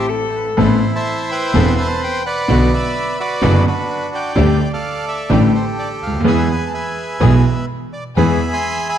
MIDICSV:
0, 0, Header, 1, 6, 480
1, 0, Start_track
1, 0, Key_signature, 0, "minor"
1, 0, Tempo, 480000
1, 578, Time_signature, 4, 2, 24, 8
1, 2497, Tempo, 468750
1, 5857, Tempo, 478469
1, 9071, End_track
2, 0, Start_track
2, 0, Title_t, "Bandoneon"
2, 0, Program_c, 0, 23
2, 296, Note_on_c, 0, 72, 53
2, 347, Note_off_c, 0, 72, 0
2, 357, Note_on_c, 0, 71, 68
2, 461, Note_off_c, 0, 71, 0
2, 589, Note_on_c, 0, 72, 102
2, 595, Note_on_c, 0, 64, 74
2, 921, Note_off_c, 0, 72, 0
2, 955, Note_on_c, 0, 81, 110
2, 958, Note_on_c, 0, 72, 80
2, 961, Note_on_c, 0, 76, 84
2, 1286, Note_off_c, 0, 81, 0
2, 1307, Note_off_c, 0, 72, 0
2, 1315, Note_on_c, 0, 79, 123
2, 1321, Note_on_c, 0, 71, 85
2, 1322, Note_on_c, 0, 72, 88
2, 1512, Note_off_c, 0, 64, 0
2, 1755, Note_off_c, 0, 79, 0
2, 1802, Note_on_c, 0, 81, 112
2, 1872, Note_off_c, 0, 76, 0
2, 2015, Note_off_c, 0, 81, 0
2, 2039, Note_on_c, 0, 79, 112
2, 2227, Note_off_c, 0, 71, 0
2, 2228, Note_off_c, 0, 72, 0
2, 2252, Note_off_c, 0, 79, 0
2, 2259, Note_on_c, 0, 78, 109
2, 2263, Note_on_c, 0, 71, 68
2, 2267, Note_on_c, 0, 74, 80
2, 2726, Note_off_c, 0, 71, 0
2, 2741, Note_on_c, 0, 71, 73
2, 2741, Note_on_c, 0, 76, 107
2, 2754, Note_off_c, 0, 78, 0
2, 3182, Note_off_c, 0, 74, 0
2, 3205, Note_off_c, 0, 71, 0
2, 3219, Note_on_c, 0, 66, 80
2, 3220, Note_on_c, 0, 71, 79
2, 3223, Note_on_c, 0, 74, 119
2, 3233, Note_off_c, 0, 76, 0
2, 3663, Note_off_c, 0, 74, 0
2, 3685, Note_off_c, 0, 66, 0
2, 3686, Note_off_c, 0, 71, 0
2, 3701, Note_on_c, 0, 66, 75
2, 3702, Note_on_c, 0, 71, 97
2, 3704, Note_on_c, 0, 62, 76
2, 4141, Note_off_c, 0, 71, 0
2, 4186, Note_on_c, 0, 79, 107
2, 4187, Note_on_c, 0, 74, 76
2, 4373, Note_off_c, 0, 66, 0
2, 4374, Note_off_c, 0, 62, 0
2, 4738, Note_off_c, 0, 79, 0
2, 4773, Note_off_c, 0, 74, 0
2, 4787, Note_on_c, 0, 69, 81
2, 4788, Note_on_c, 0, 74, 74
2, 4789, Note_on_c, 0, 77, 102
2, 5115, Note_off_c, 0, 77, 0
2, 5144, Note_on_c, 0, 76, 99
2, 5371, Note_off_c, 0, 69, 0
2, 5374, Note_off_c, 0, 74, 0
2, 5385, Note_off_c, 0, 76, 0
2, 5386, Note_on_c, 0, 69, 70
2, 5389, Note_on_c, 0, 67, 74
2, 5389, Note_on_c, 0, 74, 92
2, 5494, Note_off_c, 0, 74, 0
2, 5619, Note_on_c, 0, 72, 81
2, 5727, Note_off_c, 0, 72, 0
2, 5867, Note_on_c, 0, 74, 89
2, 5972, Note_off_c, 0, 74, 0
2, 6106, Note_on_c, 0, 77, 84
2, 6300, Note_off_c, 0, 69, 0
2, 6301, Note_off_c, 0, 67, 0
2, 6322, Note_off_c, 0, 77, 0
2, 6345, Note_on_c, 0, 68, 74
2, 6348, Note_on_c, 0, 71, 71
2, 6353, Note_on_c, 0, 76, 101
2, 6566, Note_off_c, 0, 76, 0
2, 6600, Note_on_c, 0, 80, 93
2, 6746, Note_on_c, 0, 81, 70
2, 6761, Note_off_c, 0, 80, 0
2, 6806, Note_off_c, 0, 71, 0
2, 6814, Note_off_c, 0, 81, 0
2, 6820, Note_on_c, 0, 76, 61
2, 6821, Note_on_c, 0, 71, 60
2, 6829, Note_on_c, 0, 80, 83
2, 7258, Note_off_c, 0, 68, 0
2, 7501, Note_off_c, 0, 80, 0
2, 7739, Note_off_c, 0, 76, 0
2, 7740, Note_off_c, 0, 71, 0
2, 8015, Note_on_c, 0, 74, 74
2, 8124, Note_off_c, 0, 74, 0
2, 8256, Note_on_c, 0, 76, 90
2, 8262, Note_on_c, 0, 68, 75
2, 8262, Note_on_c, 0, 83, 75
2, 8609, Note_off_c, 0, 76, 0
2, 8619, Note_on_c, 0, 84, 113
2, 8623, Note_on_c, 0, 80, 88
2, 8624, Note_on_c, 0, 76, 79
2, 8965, Note_off_c, 0, 80, 0
2, 8966, Note_off_c, 0, 76, 0
2, 8966, Note_off_c, 0, 83, 0
2, 8980, Note_on_c, 0, 80, 81
2, 8981, Note_on_c, 0, 76, 81
2, 8981, Note_on_c, 0, 83, 116
2, 8987, Note_off_c, 0, 84, 0
2, 9071, Note_off_c, 0, 68, 0
2, 9071, Note_off_c, 0, 76, 0
2, 9071, Note_off_c, 0, 80, 0
2, 9071, Note_off_c, 0, 83, 0
2, 9071, End_track
3, 0, Start_track
3, 0, Title_t, "Cello"
3, 0, Program_c, 1, 42
3, 0, Note_on_c, 1, 67, 83
3, 89, Note_on_c, 1, 69, 81
3, 104, Note_off_c, 1, 67, 0
3, 574, Note_off_c, 1, 69, 0
3, 9071, End_track
4, 0, Start_track
4, 0, Title_t, "String section"
4, 0, Program_c, 2, 48
4, 0, Note_on_c, 2, 57, 61
4, 0, Note_on_c, 2, 60, 56
4, 0, Note_on_c, 2, 64, 62
4, 481, Note_off_c, 2, 57, 0
4, 482, Note_off_c, 2, 60, 0
4, 484, Note_off_c, 2, 64, 0
4, 577, Note_on_c, 2, 59, 72
4, 577, Note_on_c, 2, 60, 64
4, 579, Note_on_c, 2, 69, 81
4, 780, Note_off_c, 2, 60, 0
4, 781, Note_off_c, 2, 59, 0
4, 782, Note_off_c, 2, 69, 0
4, 1538, Note_on_c, 2, 59, 91
4, 1541, Note_on_c, 2, 60, 81
4, 1542, Note_on_c, 2, 69, 92
4, 1741, Note_off_c, 2, 59, 0
4, 1743, Note_off_c, 2, 60, 0
4, 1744, Note_off_c, 2, 69, 0
4, 2491, Note_on_c, 2, 59, 79
4, 2494, Note_on_c, 2, 62, 74
4, 2494, Note_on_c, 2, 66, 82
4, 2698, Note_off_c, 2, 59, 0
4, 2699, Note_off_c, 2, 62, 0
4, 2699, Note_off_c, 2, 66, 0
4, 3441, Note_on_c, 2, 59, 96
4, 3444, Note_on_c, 2, 62, 83
4, 3446, Note_on_c, 2, 66, 99
4, 3648, Note_off_c, 2, 59, 0
4, 3650, Note_off_c, 2, 62, 0
4, 3651, Note_off_c, 2, 66, 0
4, 4401, Note_on_c, 2, 57, 81
4, 4403, Note_on_c, 2, 62, 71
4, 4403, Note_on_c, 2, 67, 91
4, 4608, Note_off_c, 2, 57, 0
4, 4609, Note_off_c, 2, 62, 0
4, 4609, Note_off_c, 2, 67, 0
4, 5369, Note_on_c, 2, 57, 89
4, 5371, Note_on_c, 2, 62, 81
4, 5374, Note_on_c, 2, 67, 94
4, 5573, Note_off_c, 2, 57, 0
4, 5574, Note_off_c, 2, 62, 0
4, 5575, Note_off_c, 2, 67, 0
4, 6332, Note_on_c, 2, 59, 83
4, 6334, Note_on_c, 2, 64, 74
4, 6335, Note_on_c, 2, 68, 84
4, 6533, Note_off_c, 2, 59, 0
4, 6534, Note_off_c, 2, 64, 0
4, 6535, Note_off_c, 2, 68, 0
4, 7290, Note_on_c, 2, 59, 83
4, 7292, Note_on_c, 2, 64, 73
4, 7293, Note_on_c, 2, 68, 88
4, 7493, Note_off_c, 2, 59, 0
4, 7494, Note_off_c, 2, 64, 0
4, 7494, Note_off_c, 2, 68, 0
4, 8247, Note_on_c, 2, 59, 76
4, 8252, Note_on_c, 2, 68, 78
4, 8253, Note_on_c, 2, 64, 68
4, 8454, Note_off_c, 2, 59, 0
4, 8456, Note_off_c, 2, 68, 0
4, 8457, Note_off_c, 2, 64, 0
4, 9071, End_track
5, 0, Start_track
5, 0, Title_t, "Grand piano"
5, 0, Program_c, 3, 0
5, 0, Note_on_c, 3, 33, 68
5, 0, Note_on_c, 3, 45, 65
5, 0, Note_on_c, 3, 52, 55
5, 0, Note_on_c, 3, 57, 49
5, 0, Note_on_c, 3, 60, 50
5, 0, Note_on_c, 3, 69, 62
5, 472, Note_off_c, 3, 52, 0
5, 478, Note_off_c, 3, 57, 0
5, 482, Note_off_c, 3, 33, 0
5, 483, Note_off_c, 3, 45, 0
5, 485, Note_off_c, 3, 60, 0
5, 491, Note_off_c, 3, 69, 0
5, 571, Note_on_c, 3, 33, 90
5, 572, Note_on_c, 3, 52, 73
5, 572, Note_on_c, 3, 59, 69
5, 573, Note_on_c, 3, 60, 65
5, 575, Note_on_c, 3, 45, 87
5, 576, Note_on_c, 3, 69, 81
5, 778, Note_off_c, 3, 33, 0
5, 778, Note_off_c, 3, 52, 0
5, 778, Note_off_c, 3, 59, 0
5, 778, Note_off_c, 3, 60, 0
5, 780, Note_off_c, 3, 45, 0
5, 780, Note_off_c, 3, 69, 0
5, 1537, Note_on_c, 3, 52, 74
5, 1540, Note_on_c, 3, 59, 70
5, 1540, Note_on_c, 3, 60, 65
5, 1543, Note_on_c, 3, 28, 88
5, 1543, Note_on_c, 3, 40, 85
5, 1544, Note_on_c, 3, 69, 82
5, 1741, Note_off_c, 3, 52, 0
5, 1742, Note_off_c, 3, 59, 0
5, 1743, Note_off_c, 3, 60, 0
5, 1744, Note_off_c, 3, 28, 0
5, 1744, Note_off_c, 3, 40, 0
5, 1744, Note_off_c, 3, 69, 0
5, 2483, Note_on_c, 3, 50, 72
5, 2484, Note_on_c, 3, 35, 91
5, 2484, Note_on_c, 3, 47, 93
5, 2484, Note_on_c, 3, 54, 67
5, 2486, Note_on_c, 3, 59, 67
5, 2488, Note_on_c, 3, 66, 83
5, 2694, Note_off_c, 3, 35, 0
5, 2694, Note_off_c, 3, 47, 0
5, 2694, Note_off_c, 3, 50, 0
5, 2694, Note_off_c, 3, 54, 0
5, 2695, Note_off_c, 3, 59, 0
5, 2696, Note_off_c, 3, 66, 0
5, 3439, Note_on_c, 3, 50, 75
5, 3441, Note_on_c, 3, 30, 94
5, 3441, Note_on_c, 3, 54, 72
5, 3442, Note_on_c, 3, 42, 88
5, 3444, Note_on_c, 3, 59, 73
5, 3448, Note_on_c, 3, 66, 84
5, 3647, Note_off_c, 3, 50, 0
5, 3648, Note_off_c, 3, 30, 0
5, 3649, Note_off_c, 3, 42, 0
5, 3649, Note_off_c, 3, 54, 0
5, 3650, Note_off_c, 3, 59, 0
5, 3652, Note_off_c, 3, 66, 0
5, 4402, Note_on_c, 3, 57, 78
5, 4403, Note_on_c, 3, 55, 76
5, 4404, Note_on_c, 3, 50, 94
5, 4408, Note_on_c, 3, 38, 96
5, 4410, Note_on_c, 3, 67, 88
5, 4608, Note_off_c, 3, 57, 0
5, 4609, Note_off_c, 3, 55, 0
5, 4611, Note_off_c, 3, 38, 0
5, 4611, Note_off_c, 3, 50, 0
5, 4612, Note_off_c, 3, 67, 0
5, 5364, Note_on_c, 3, 50, 73
5, 5366, Note_on_c, 3, 45, 91
5, 5366, Note_on_c, 3, 57, 66
5, 5367, Note_on_c, 3, 33, 91
5, 5367, Note_on_c, 3, 55, 67
5, 5369, Note_on_c, 3, 67, 80
5, 5570, Note_off_c, 3, 50, 0
5, 5571, Note_off_c, 3, 45, 0
5, 5571, Note_off_c, 3, 57, 0
5, 5572, Note_off_c, 3, 33, 0
5, 5572, Note_off_c, 3, 55, 0
5, 5573, Note_off_c, 3, 67, 0
5, 6146, Note_on_c, 3, 37, 53
5, 6209, Note_off_c, 3, 37, 0
5, 6219, Note_on_c, 3, 38, 67
5, 6276, Note_off_c, 3, 38, 0
5, 6281, Note_on_c, 3, 39, 83
5, 6324, Note_on_c, 3, 52, 86
5, 6326, Note_on_c, 3, 40, 91
5, 6326, Note_on_c, 3, 56, 68
5, 6329, Note_on_c, 3, 59, 67
5, 6330, Note_on_c, 3, 68, 79
5, 6337, Note_off_c, 3, 39, 0
5, 6530, Note_off_c, 3, 40, 0
5, 6530, Note_off_c, 3, 52, 0
5, 6530, Note_off_c, 3, 56, 0
5, 6532, Note_off_c, 3, 59, 0
5, 6532, Note_off_c, 3, 68, 0
5, 7286, Note_on_c, 3, 52, 70
5, 7287, Note_on_c, 3, 47, 87
5, 7287, Note_on_c, 3, 56, 67
5, 7291, Note_on_c, 3, 35, 91
5, 7291, Note_on_c, 3, 59, 69
5, 7294, Note_on_c, 3, 68, 82
5, 7491, Note_off_c, 3, 47, 0
5, 7491, Note_off_c, 3, 52, 0
5, 7491, Note_off_c, 3, 56, 0
5, 7493, Note_off_c, 3, 35, 0
5, 7493, Note_off_c, 3, 59, 0
5, 7495, Note_off_c, 3, 68, 0
5, 8256, Note_on_c, 3, 52, 87
5, 8260, Note_on_c, 3, 59, 65
5, 8262, Note_on_c, 3, 56, 66
5, 8263, Note_on_c, 3, 40, 83
5, 8265, Note_on_c, 3, 68, 82
5, 8459, Note_off_c, 3, 52, 0
5, 8460, Note_off_c, 3, 59, 0
5, 8461, Note_off_c, 3, 56, 0
5, 8462, Note_off_c, 3, 40, 0
5, 8463, Note_off_c, 3, 68, 0
5, 9071, End_track
6, 0, Start_track
6, 0, Title_t, "Double bass"
6, 0, Program_c, 4, 43
6, 583, Note_on_c, 4, 33, 96
6, 783, Note_off_c, 4, 33, 0
6, 1546, Note_on_c, 4, 28, 105
6, 1746, Note_off_c, 4, 28, 0
6, 2489, Note_on_c, 4, 35, 96
6, 2697, Note_off_c, 4, 35, 0
6, 3451, Note_on_c, 4, 30, 110
6, 3653, Note_off_c, 4, 30, 0
6, 4405, Note_on_c, 4, 38, 98
6, 4610, Note_off_c, 4, 38, 0
6, 5371, Note_on_c, 4, 33, 108
6, 5574, Note_off_c, 4, 33, 0
6, 6089, Note_on_c, 4, 38, 63
6, 6321, Note_off_c, 4, 38, 0
6, 6327, Note_on_c, 4, 40, 99
6, 6531, Note_off_c, 4, 40, 0
6, 7286, Note_on_c, 4, 35, 98
6, 7491, Note_off_c, 4, 35, 0
6, 8250, Note_on_c, 4, 40, 90
6, 8456, Note_off_c, 4, 40, 0
6, 9071, End_track
0, 0, End_of_file